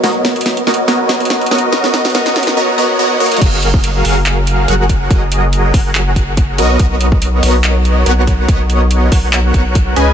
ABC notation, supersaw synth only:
X:1
M:4/4
L:1/8
Q:"Swing 16ths" 1/4=142
K:Blyd
V:1 name="Supersaw synth"
[B,FAcd]3 [B,FAcd] [B,FAcd]3 [B,FAcd] | [B,FAcd]2 [B,FAcd]2 [B,FAcd] [B,FAcd] [B,FAcd] [A,FAcd] | [F,FGAe]3 [F,FGAe]3 [F,FGAf]2 | [F,FGAd]3 [F,FGAf]4 [B,FAcd] |
[B,FAd]3 [B,FAcd]3 [B,FAcf]2 | [B,FAcd]3 [B,Fcf]2 [B,FAcf]2 [CGBdg] |]